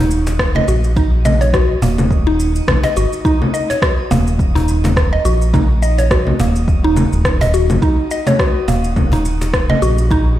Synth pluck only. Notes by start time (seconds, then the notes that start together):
0.00 D#4
0.56 D#5
0.68 F#4
0.97 D#4
1.25 D#5
1.41 C#5
1.54 F#4
1.82 A#3
2.27 D#4
2.84 D#5
2.97 F#4
3.25 D#4
3.54 D#5
3.70 C#5
3.83 F#4
4.11 A#3
4.55 D#4
5.13 D#5
5.25 F#4
5.54 D#4
5.82 D#5
5.99 C#5
6.11 F#4
6.40 A#3
6.84 D#4
7.41 D#5
7.54 F#4
7.82 D#4
8.11 D#5
8.27 C#5
8.40 F#4
8.68 A#3
9.13 D#4
9.70 D#5
9.82 F#4
10.11 D#4